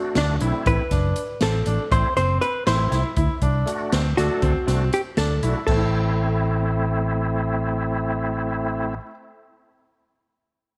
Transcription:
Already playing: A3 D4 F#4
0.15 D2 D4, snare, closed hi-hat
0.40 B1 A3 C4 E4, closed hi-hat
0.65 A1 A3 C4 E4 B4, kick, closed hi-hat
0.91 F#1 D4, kick, snare, closed hi-hat
1.16 closed hi-hat
1.41 A1 C4 A4, snare, closed hi-hat
1.66 A1 D4, closed hi-hat
1.91 A1 A3 C4 E4 C5, kick, closed hi-hat
2.16 F#1 C4 C5, closed hi-hat
2.41 B4, closed hi-hat
2.66 A1 A3 C4 E4 C5, snare, closed hi-hat
2.92 C2 E4, snare, closed hi-hat
3.17 D2 E4, kick, closed hi-hat
3.42 C2 D4, kick, closed hi-hat
3.66 A3 D4 F#4, closed hi-hat
3.92 D2 C4, snare, closed hi-hat
4.17 D2 A3 D4 F#4 A4, snare, closed hi-hat
4.42 D2 C4, kick, closed hi-hat
4.66 C2 A3 C4 D4 F#4, snare, closed hi-hat
4.93 G4, closed hi-hat
5.17 D2 D4 A4, snare, closed hi-hat
5.42 B1 A3 D4 E4 F#4, closed hi-hat
5.67 A1 A3 C4 E4 A4, kick, crash
5.72 C4
5.76 E4 A4

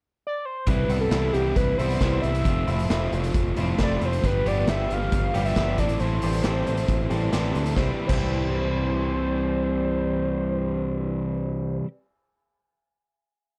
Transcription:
0.27 D5
0.45 C5
0.67 C2 C3 E3 G3 C4 E4 B4, kick, closed hi-hat
0.88 C2 E3 G3 B3 E4, closed hi-hat
1.01 A4
1.11 C2 E3 G3 B3 C4 E4, snare, closed hi-hat
1.33 C2 G4, closed hi-hat
1.56 C2 B4, kick, closed hi-hat
1.77 C2 E3 G3 B3 C4 E4 C5, closed hi-hat
1.90 closed hi-hat
2.00 C2 C3 E3 G3 B3 C4 E4, kick, snare, closed hi-hat
2.22 C2 C4 E4 E5, closed hi-hat
2.26 G3
2.34 closed hi-hat
2.44 F1 F2 C3 F3 A3 C4 F4, kick, closed hi-hat
2.67 F1 F3 A3 C4 E4, closed hi-hat
2.79 closed hi-hat
2.89 F1 F3 A3 C4 E4 F4, snare, closed hi-hat
3.12 F1, closed hi-hat
3.24 closed hi-hat
3.34 F1, kick, closed hi-hat
3.56 F1 F3 A3 C4 E4 F4, closed hi-hat
3.79 F1 F2 C3 F3 A3 C4 E4 F4, kick, snare, closed hi-hat
3.83 D5
3.90 snare
4.01 F1 F3 A3 C4 F4, closed hi-hat
4.06 C5
4.13 closed hi-hat
4.23 G1 G2 D3 F3 G3 B3 G4 B4, kick, closed hi-hat
4.45 G1 F3 G3 B3 G4 D5, closed hi-hat
4.68 G1 F3 G3 B3 G4 E5, snare, closed hi-hat
4.90 G1 F5, closed hi-hat
5.12 G1, kick, closed hi-hat
5.34 G1 F3 G3 B3 G4, closed hi-hat
5.45 E5, closed hi-hat
5.56 G1 G2 D3 F3 G3 B3 G4, kick, snare, closed hi-hat
5.78 A1 E3 C4 E4 A4 D5, kick, closed hi-hat
5.82 A2
5.89 closed hi-hat
6.00 A1 A2 E3 C4 C5, closed hi-hat
6.04 E4 A4
6.22 A1 E3 G3 C4 G4, closed hi-hat
6.33 closed hi-hat
6.44 A1 E3 G3 C4 E4 G4 A4, snare, closed hi-hat
6.67 A1, closed hi-hat
6.77 closed hi-hat
6.88 A1, kick, closed hi-hat
7.10 A1 E3 G3 E4 G4 A4, closed hi-hat
7.14 C4
7.32 A1 A2 E3 G3 C4 E4 G4 A4, snare, closed hi-hat
7.44 snare
7.53 D2 C4 E4 A4, closed hi-hat
7.66 closed hi-hat
7.76 C2 C3 E3 G3 C4 E4 G4 C5, kick, snare
8.07 C2 C3 E3 C5, kick, crash
8.12 G3 C4 E4 G4

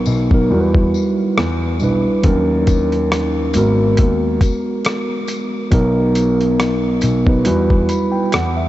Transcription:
Already playing: F#3 B3 D#4 A#4 B4
0.06 B1, tambourine
0.31 F#3 B3 D#4 A#4, kick
0.50 E2 G3 E4 F#4 A#4
0.61 B4
0.75 kick
0.94 tambourine
1.38 E2, cross-stick
1.80 B1 G3 D4 E4, tambourine
1.84 B4
2.23 D#2 F#3 C#4 D#4 A#4, kick, closed hi-hat
2.67 kick, closed hi-hat, tambourine
2.92 closed hi-hat
3.12 cross-stick, closed hi-hat
3.53 G#1 G#3 B3, closed hi-hat, tambourine
3.57 F#4 A#4
3.97 D#2, kick, closed hi-hat
4.41 kick, closed hi-hat, tambourine
4.85 cross-stick, closed hi-hat
5.27 closed hi-hat, tambourine
5.71 B1 F#3 B3 D#4 A#4, kick, closed hi-hat
6.15 closed hi-hat, tambourine
6.41 closed hi-hat
6.60 cross-stick, closed hi-hat
7.01 B1, closed hi-hat, tambourine
7.26 F#3 B3 D#4 B4, kick
7.44 E2 G3 E4 F#4 B4, closed hi-hat
7.70 kick
7.89 B5, closed hi-hat, tambourine
8.12 G5
8.32 E2 F#5, cross-stick, closed hi-hat
8.57 E5

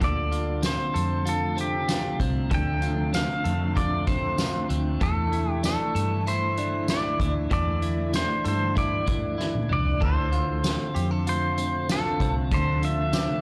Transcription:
Already playing: F4
0.00 D2 C3 D3 F3 A3 D4 A4 D5, kick, closed hi-hat
0.31 F4, closed hi-hat
0.63 C4 C5, snare, closed hi-hat, tambourine
0.94 F2 A4, closed hi-hat
1.26 F4 A4, closed hi-hat
1.57 C4 G4, closed hi-hat
1.89 F4, snare, closed hi-hat, tambourine
2.20 C2 C4, kick, closed hi-hat
2.50 D2 D3 A4, kick, closed hi-hat
2.55 G5
2.82 F4, closed hi-hat
3.13 C4 F5, snare, closed hi-hat, tambourine
3.44 F2 A4, closed hi-hat
3.75 F4 D5, kick, closed hi-hat
4.07 C4 C5, kick, closed hi-hat
4.38 F4, snare, closed hi-hat, tambourine
4.69 D2 C4, closed hi-hat
5.01 E2 D3 E3 E4 A4, kick, closed hi-hat
5.32 E4, closed hi-hat
5.52 G4
5.63 D4 A4, snare, closed hi-hat, tambourine
5.95 G2 A4, closed hi-hat
6.27 E4 C5, closed hi-hat
6.57 D4, closed hi-hat
6.88 E4 D5, snare, closed hi-hat, tambourine
7.20 D2 D4, kick, closed hi-hat
7.50 E2 E3 A4 D5, kick, closed hi-hat
7.82 E4, closed hi-hat
8.13 D4 C5, snare, closed hi-hat, tambourine
8.44 G2 A4 C5, closed hi-hat
8.75 E4 D5, kick, closed hi-hat
9.06 D4, kick, closed hi-hat
9.38 E4, snare
9.55 high tom
9.69 C2 D4 D5, mid tom
9.86 floor tom
10.00 D2 C3 D3 F3 D4 A4 E6, kick, crash
10.05 C5
10.32 F4, closed hi-hat
10.64 C4, snare, closed hi-hat, tambourine
10.95 F2 G4, closed hi-hat
11.11 A4
11.27 F4 C5, closed hi-hat
11.58 C4, closed hi-hat
11.89 F4 A4, snare, closed hi-hat, tambourine
12.20 C2 C4, kick, closed hi-hat
12.51 D2 D3 A4 C5, kick, closed hi-hat
12.82 F4 E5, closed hi-hat
13.13 C4 D6, snare, closed hi-hat, tambourine

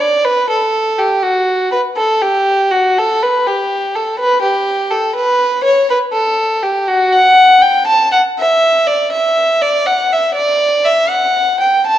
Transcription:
0.01 D5
0.25 B4
0.50 A4
0.98 G4
1.22 F#4
1.72 B4
1.97 A4
2.22 G4
2.71 F#4
2.98 A4
3.23 B4
3.47 G4
3.96 A4
4.19 B4
4.42 G4
4.91 A4
5.16 B4
5.64 C#5
5.90 B4
6.13 A4
6.63 G4
6.88 F#4
7.13 F#5
7.62 G5
7.87 A5
8.12 F#5
8.39 E5
8.87 D5
9.12 E5
9.62 D5
9.86 F#5
10.12 E5
10.35 D5
10.85 E5
11.09 F#5
11.60 G5
11.87 A5

